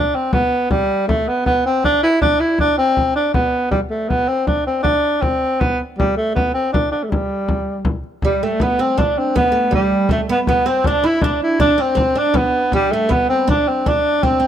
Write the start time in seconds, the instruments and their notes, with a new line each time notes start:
Already playing: tenor saxophone D4
0.14 tenor saxophone C4, frame drum
0.33 tenor saxophone B3, frame drum
0.70 tenor saxophone G3, frame drum
1.08 tenor saxophone A3, frame drum
1.28 tenor saxophone B3, frame drum
1.46 tenor saxophone B3, frame drum
1.66 tenor saxophone C4
1.84 tenor saxophone D4, frame drum
2.03 tenor saxophone E4, frame drum
2.21 tenor saxophone D4, frame drum
2.40 tenor saxophone E4, frame drum
2.59 tenor saxophone D4, frame drum
2.78 tenor saxophone C4, frame drum
2.97 frame drum
3.16 tenor saxophone D4
3.34 tenor saxophone B3, frame drum
3.71 tenor saxophone G3, frame drum
3.90 tenor saxophone A3
4.09 tenor saxophone B3, frame drum
4.28 tenor saxophone C4, frame drum
4.47 tenor saxophone D4, frame drum
4.67 tenor saxophone C4, frame drum
4.83 tenor saxophone D4, frame drum
5.22 tenor saxophone C4, frame drum
5.43 frame drum
5.60 tenor saxophone B3, frame drum
5.80 frame drum
5.98 tenor saxophone G3, frame drum
6.17 tenor saxophone A3
6.35 tenor saxophone B3, frame drum
6.54 tenor saxophone C4, frame drum
6.73 tenor saxophone D4, frame drum
6.92 tenor saxophone D4, frame drum
7.03 tenor saxophone A3
7.10 tenor saxophone G3, frame drum
7.48 frame drum
7.85 frame drum
8.04 frame drum
8.22 oud G3, tenor saxophone G3, frame drum
8.43 oud A3, tenor saxophone A3
8.60 oud B3, tenor saxophone B3, frame drum
8.79 oud C4, tenor saxophone C4, frame drum
8.98 oud D4, tenor saxophone D4, frame drum
9.17 tenor saxophone C4, frame drum
9.36 oud B3, tenor saxophone B3, frame drum
9.52 oud A3
9.71 oud G3, tenor saxophone G3, frame drum
9.92 frame drum
10.09 oud A3, tenor saxophone A3, frame drum
10.29 oud B3, tenor saxophone B3
10.47 tenor saxophone B3, oud B3, frame drum
10.66 oud C4, tenor saxophone C4
10.84 tenor saxophone D4, oud D4, frame drum
11.04 oud E4, tenor saxophone E4, frame drum
11.21 tenor saxophone D4, oud D4, frame drum
11.41 tenor saxophone E4, frame drum
11.60 oud D4, tenor saxophone D4, frame drum
11.78 oud C4, tenor saxophone C4
11.95 oud C4, frame drum
12.15 oud D4, tenor saxophone D4, frame drum
12.34 oud B3, tenor saxophone B3, frame drum
12.72 oud G3, tenor saxophone G3, frame drum
12.92 tenor saxophone A3, oud A3
13.09 oud B3, tenor saxophone B3, frame drum
13.29 tenor saxophone C4, frame drum
13.48 oud D4, tenor saxophone D4, frame drum
13.67 tenor saxophone C4, frame drum
13.86 oud D4, tenor saxophone D4, frame drum
14.23 oud C4, tenor saxophone C4, frame drum
14.40 oud C4, frame drum